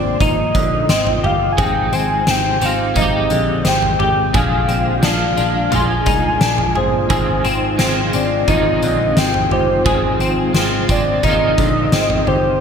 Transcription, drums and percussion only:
0.20 kick medium
0.20 floor tom medium
0.20 tambourine medium
0.55 kick loud
0.55 tambourine medium
0.89 snare loud
0.89 tambourine medium
1.07 floor tom medium
1.24 floor tom medium
1.58 kick loud
1.58 floor tom loud
1.58 tambourine medium
1.93 tambourine medium
2.27 snare loud
2.27 tambourine medium
2.61 tambourine medium
2.96 kick medium
2.96 floor tom medium
2.96 tambourine medium
3.30 tambourine medium
3.65 snare loud
3.65 tambourine medium
3.82 floor tom medium
4.00 floor tom medium
4.34 kick loud
4.34 floor tom loud
4.34 tambourine medium
4.69 tambourine medium
5.03 snare loud
5.03 tambourine medium
5.37 tambourine medium
5.72 floor tom medium
5.72 tambourine medium
6.06 kick loud
6.06 tambourine medium
6.41 snare loud
6.41 tambourine medium
6.58 floor tom medium
6.75 floor tom medium
7.10 kick loud
7.10 floor tom loud
7.10 tambourine medium
7.45 tambourine medium
7.79 snare loud
7.79 tambourine medium
8.13 tambourine medium
8.48 kick medium
8.48 floor tom medium
8.48 tambourine medium
8.82 tambourine medium
9.17 snare loud
9.17 tambourine medium
9.34 floor tom medium
9.51 floor tom medium
9.86 kick loud
9.86 floor tom loud
9.86 tambourine medium
10.20 tambourine medium
10.55 snare loud
10.55 tambourine medium
10.89 kick medium
10.89 tambourine medium
11.23 kick medium
11.23 floor tom medium
11.23 tambourine medium
11.58 kick loud
11.58 tambourine medium
11.92 snare loud
11.92 tambourine medium
12.10 floor tom medium
12.27 floor tom medium

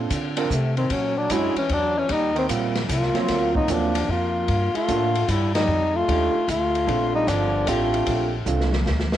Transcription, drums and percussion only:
0.10 kick soft
0.10 hi-hat pedal medium
0.10 ride medium
0.37 ride medium
0.50 kick soft
0.50 hi-hat pedal medium
0.77 ride soft
0.90 kick soft
0.90 ride medium
1.30 kick soft
1.30 hi-hat pedal medium
1.30 ride medium
1.56 ride soft
1.69 kick soft
1.69 ride soft
2.09 kick soft
2.09 ride medium
2.36 ride soft
2.49 kick soft
2.49 hi-hat pedal medium
2.49 ride medium
2.75 snare soft
2.75 ride soft
2.89 kick soft
2.89 hi-hat pedal medium
2.89 ride medium
3.02 snare soft
3.15 snare soft
3.15 ride soft
3.28 kick soft
3.28 snare soft
3.28 ride medium
3.55 kick soft
3.68 kick soft
3.68 hi-hat pedal soft
3.68 ride medium
3.95 ride medium
4.09 kick soft
4.48 kick soft
4.48 ride soft
4.75 ride soft
4.88 kick soft
4.88 hi-hat pedal soft
4.88 ride medium
5.15 ride soft
5.28 kick soft
5.28 hi-hat pedal soft
5.28 ride medium
5.55 snare medium
5.55 ride medium
6.08 kick soft
6.08 ride medium
6.48 kick soft
6.48 hi-hat pedal soft
6.48 ride soft
6.75 ride soft
6.88 kick soft
6.88 ride soft
7.28 kick soft
7.28 hi-hat pedal medium
7.28 ride medium
7.67 kick soft
7.67 hi-hat pedal soft
7.67 ride medium
7.94 ride soft
8.06 kick soft
8.06 ride medium
8.46 hi-hat pedal medium
8.60 snare soft
8.73 snare medium
8.86 snare medium
9.00 snare medium
9.12 snare medium

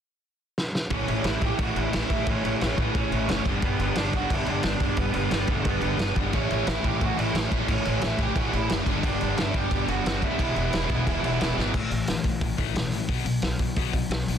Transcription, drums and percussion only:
0.58 snare medium
0.75 snare medium
0.90 kick loud
0.90 crash medium
1.08 crash medium
1.24 snare loud
1.24 crash medium
1.42 kick medium
1.42 crash medium
1.59 kick loud
1.59 crash medium
1.76 crash medium
1.93 snare loud
1.93 crash medium
2.10 kick medium
2.10 crash medium
2.27 kick loud
2.27 crash medium
2.45 crash medium
2.61 snare loud
2.61 crash medium
2.78 kick medium
2.78 crash medium
2.95 kick loud
2.95 crash medium
3.12 crash medium
3.29 snare loud
3.29 crash medium
3.46 kick medium
3.46 crash medium
3.62 kick loud
3.62 crash medium
3.80 crash medium
3.96 snare loud
3.96 crash medium
4.13 kick medium
4.13 crash medium
4.30 kick loud
4.30 crash medium
4.46 crash medium
4.63 snare loud
4.63 crash medium
4.80 kick medium
4.80 crash medium
4.97 kick loud
4.97 crash medium
5.14 crash medium
5.31 snare loud
5.31 crash medium
5.47 kick medium
5.47 crash medium
5.65 kick loud
5.65 crash medium
5.81 crash medium
5.99 snare loud
5.99 crash medium
6.16 kick medium
6.16 crash medium
6.33 kick loud
6.33 crash medium
6.51 crash medium
6.67 snare loud
6.67 crash medium
6.84 kick medium
6.84 crash medium
7.01 kick loud
7.01 crash medium
7.19 crash medium
7.35 snare loud
7.35 crash medium
7.52 kick medium
7.52 crash medium
7.68 kick loud
7.68 crash medium
7.85 crash medium
8.02 snare loud
8.02 crash medium
8.18 kick medium
8.18 crash medium
8.36 kick loud
8.36 crash medium
8.53 crash medium
8.70 snare loud
8.70 crash medium
8.86 kick medium
8.86 crash medium
9.03 kick loud
9.03 crash medium
9.21 crash medium
9.38 snare loud
9.38 crash medium
9.54 kick medium
9.54 crash medium
9.71 kick loud
9.71 crash medium
9.88 crash medium
10.06 snare loud
10.06 crash medium
10.22 kick medium
10.22 crash medium
10.39 kick loud
10.39 crash medium
10.56 crash medium
10.73 snare loud
10.73 crash medium
10.89 kick medium
10.89 crash medium
11.07 kick loud
11.07 crash medium
11.24 crash medium
11.41 snare loud
11.41 crash medium
11.59 snare medium
11.74 kick loud
11.74 crash loud
11.91 open hi-hat medium
12.07 snare loud
12.07 open hi-hat medium
12.24 kick medium
12.24 open hi-hat medium
12.41 kick loud
12.41 open hi-hat medium
12.58 kick medium
12.58 open hi-hat medium
12.76 snare loud
12.76 open hi-hat medium
12.92 open hi-hat medium
13.09 kick loud
13.09 open hi-hat medium
13.26 open hi-hat medium
13.42 snare loud
13.42 open hi-hat medium
13.59 kick medium
13.59 open hi-hat medium
13.76 kick loud
13.76 open hi-hat medium
13.93 kick medium
13.93 open hi-hat medium
14.11 snare loud
14.11 open hi-hat medium
14.28 open hi-hat medium

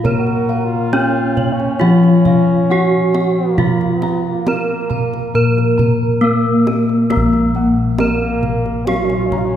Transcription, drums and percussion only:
0.05 kendang high soft
0.05 kendang low medium
0.27 kendang slap soft
0.49 kendang slap soft
0.93 kendang slap soft
0.93 kendang high medium
1.37 kendang low medium
1.60 kendang slap soft
1.81 kendang high soft
2.04 kendang slap soft
2.25 kendang slap soft
2.25 kendang low medium
3.14 kendang high medium
3.58 kendang low medium
3.81 kendang slap soft
4.02 kendang high soft
4.47 kendang slap soft
4.47 kendang high medium
4.90 kendang slap soft
4.90 kendang low medium
5.13 kendang slap soft
5.36 kendang slap soft
5.58 kendang slap soft
5.79 kendang slap soft
5.79 kendang low medium
6.67 kendang high medium
6.89 kendang slap soft
7.10 kendang high medium
7.10 kendang low medium
7.33 kendang slap soft
7.55 kendang slap soft
7.98 kendang slap soft
7.98 kendang high medium
8.43 kendang slap soft
8.43 kendang low medium
8.66 kendang slap soft
8.87 kendang high soft
9.10 kendang slap soft
9.32 kendang low medium

